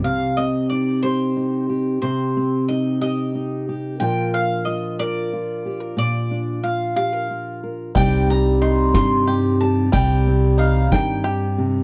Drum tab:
RD |------|------|------|------|
SD |------|------|------|------|
BD |------|------|------|------|

RD |xxxxxx|xxx-xx|
SD |---o--|---o--|
BD |o--o--|o--o--|